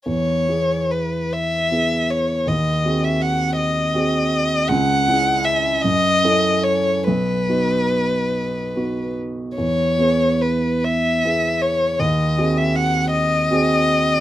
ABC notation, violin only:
X:1
M:6/8
L:1/16
Q:3/8=51
K:E
V:1 name="Violin"
c4 B2 e4 c2 | d3 e f2 d6 | f4 e2 d4 c2 | B8- B2 z2 |
c4 B2 e4 c2 | d3 e f2 d6 |]